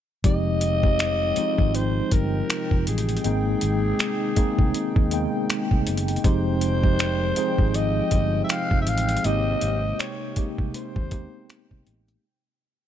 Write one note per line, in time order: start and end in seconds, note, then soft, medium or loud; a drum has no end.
0.24 1.33 F1 loud
0.24 9.20 C3 medium
0.24 0.61 F3 medium
0.24 3.21 F3 medium
0.24 0.61 G#3 medium
0.24 3.22 G#3 medium
0.24 0.62 C4 medium
0.24 12.20 D#4 medium
0.24 0.62 D#4 medium
0.24 0.62 G4 loud
0.24 1.77 D#5 loud
0.24 6.21 G5 medium
0.24 kick loud
0.24 closed hi-hat medium
0.61 closed hi-hat medium
0.83 1.20 F3 medium
0.83 1.21 G#3 medium
0.83 1.21 C4 medium
0.83 1.21 D#4 medium
0.83 1.21 G4 medium
0.83 kick loud
0.99 finger snap loud
0.99 closed hi-hat medium
1.36 2.38 F3 medium
1.36 2.38 G#3 medium
1.36 2.38 C4 medium
1.36 2.38 D#4 medium
1.36 2.39 F4 medium
1.36 muted fingered electric bass stroke soft
1.36 closed hi-hat medium
1.58 2.00 G#1 medium
1.58 kick medium
1.75 2.14 C5 medium
1.75 closed hi-hat medium
2.11 2.41 G1 medium
2.11 2.87 A#4 loud
2.11 kick medium
2.11 closed hi-hat medium
2.50 finger snap loud
2.50 closed hi-hat medium
2.71 2.84 F1 medium
2.71 kick medium
2.87 3.16 A1 medium
2.87 3.22 G#4 medium
2.87 closed hi-hat medium
2.98 closed hi-hat medium
3.09 closed hi-hat soft
3.17 closed hi-hat soft
3.24 3.54 G#1 medium
3.24 6.21 D#3 medium
3.24 3.98 G#3 medium
3.24 6.21 G#3 medium
3.24 3.99 A#3 medium
3.24 3.99 C4 medium
3.24 3.99 D#4 medium
3.24 5.83 G#4 loud
3.24 3.99 G5 medium
3.24 closed hi-hat medium
3.61 3.91 G#1 medium
3.61 closed hi-hat medium
3.99 finger snap loud
3.99 closed hi-hat medium
4.36 4.88 G#3 medium
4.36 4.88 A#3 medium
4.36 4.88 C4 medium
4.36 4.89 D#4 medium
4.36 4.89 G#4 loud
4.36 muted fingered electric bass stroke soft
4.36 kick medium
4.36 closed hi-hat medium
4.59 4.71 C2 medium
4.59 kick medium
4.74 closed hi-hat medium
4.96 5.25 D#2 medium
4.96 kick loud
5.11 5.86 G#3 medium
5.11 5.86 A#3 medium
5.11 5.20 B3 medium
5.11 5.87 D#4 medium
5.11 5.87 G5 loud
5.11 closed hi-hat medium
5.19 5.90 C4 medium
5.50 finger snap loud
5.50 closed hi-hat medium
5.71 5.83 C2 medium
5.71 kick medium
5.87 6.16 F#1 medium
5.87 closed hi-hat medium
5.97 closed hi-hat medium
6.08 closed hi-hat soft
6.16 closed hi-hat soft
6.24 7.33 F1 loud
6.24 6.61 F3 medium
6.24 9.21 F3 medium
6.24 12.20 G#3 medium
6.24 6.62 G#3 medium
6.24 6.62 C4 medium
6.24 6.62 D#4 medium
6.24 6.62 G4 loud
6.24 7.77 C5 loud
6.24 12.20 G5 loud
6.24 kick loud
6.24 closed hi-hat medium
6.61 closed hi-hat medium
6.83 7.20 F3 medium
6.83 7.21 G#3 medium
6.83 7.21 C4 medium
6.83 7.21 D#4 medium
6.83 7.21 G4 medium
6.83 kick medium
6.99 finger snap loud
6.99 closed hi-hat medium
7.36 8.38 F3 medium
7.36 8.38 G#3 medium
7.36 8.38 C4 medium
7.36 8.38 D#4 medium
7.36 8.39 G#4 loud
7.36 muted fingered electric bass stroke soft
7.36 closed hi-hat medium
7.58 8.00 G#1 medium
7.58 kick medium
7.74 8.44 D#5 loud
7.74 closed hi-hat medium
8.11 8.41 G1 loud
8.11 kick medium
8.11 closed hi-hat medium
8.44 8.52 E5 medium
8.49 8.81 F5 loud
8.49 finger snap loud
8.49 closed hi-hat medium
8.71 8.87 F1 medium
8.71 kick medium
8.82 8.89 E5 medium
8.87 9.16 A1 medium
8.87 9.27 F5 loud
8.87 closed hi-hat medium
8.98 closed hi-hat medium
9.09 closed hi-hat medium
9.17 closed hi-hat soft
9.24 9.54 G#1 loud
9.24 12.21 C3 medium
9.24 9.98 G#3 medium
9.24 9.99 A#3 medium
9.24 9.99 C4 medium
9.24 9.99 D#4 medium
9.24 12.21 G4 medium
9.24 9.99 G4 loud
9.24 10.01 D#5 loud
9.24 closed hi-hat medium
9.61 9.91 G#1 medium
9.61 closed hi-hat medium
9.99 10.49 C#5 medium
9.99 finger snap loud
9.99 closed hi-hat medium
10.36 10.88 G#3 medium
10.36 10.88 A#3 medium
10.36 10.88 C4 medium
10.36 10.89 D#4 medium
10.36 10.89 G4 medium
10.36 muted fingered electric bass stroke soft
10.36 kick medium
10.36 closed hi-hat medium
10.58 10.71 C2 medium
10.58 kick medium
10.74 11.83 C5 medium
10.74 muted fingered electric bass stroke soft
10.74 closed hi-hat medium
10.96 11.25 D#2 medium
10.96 kick loud
11.11 11.86 G#3 medium
11.11 11.86 A#3 medium
11.11 11.20 B3 medium
11.11 11.87 D#4 medium
11.11 11.87 G4 medium
11.11 kick medium
11.11 closed hi-hat medium
11.19 11.90 C4 medium
11.50 finger snap loud
11.50 closed hi-hat medium
11.71 11.83 C2 medium
11.71 kick medium
11.87 12.16 A1 medium
11.87 closed hi-hat medium
12.08 closed hi-hat medium